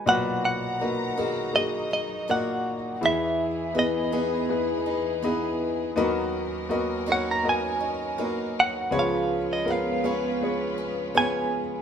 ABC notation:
X:1
M:4/4
L:1/16
Q:1/4=81
K:B
V:1 name="Clean electric guitar"
f2 f6 d2 d2 f4 | e4 d8- d2 z2 | z6 f a g6 f2 | ^e3 d e8 g4 |]
V:2 name="Grand piano"
[A,,DFB]2 z2 [A,DFB]2 [A,DFG]2 [A,DFG]2 z2 [A,,DFA]2 z2 | [B,EGe]2 z2 [B,EGd]2 [B,EGd]2 [B,EGB]2 z2 [B,EGd]2 z2 | [B,FAd]2 z2 [B,FAd]2 [B,FAc]2 [B,FAd]2 z2 [B,FAd]2 z2 | [B,^EGc]2 z2 [B,EGA]2 [B,EGc]2 [B,EGc]2 z2 [B,EGc]2 z2 |]
V:3 name="Grand piano" clef=bass
[B,,,B,,]16 | [E,,E,]16 | [D,,D,]16 | [C,,C,]16 |]
V:4 name="Steel-string acoustic guitar"
F,4 A,2 [A,DF]4 D2 [A,DF]4 | E,4 B,2 [B,DG]4 D2 [B,DG]4 | F,4 A,2 [A,DF]4 D2 [A,DF]4 | ^E,4 B,2 [B,CG]4 C2 [B,CG]4 |]
V:5 name="String section"
[D,F,Da]16 | [E,,E,B,G]16 | [D,,D,CA]16 | [C,G,^EB]16 |]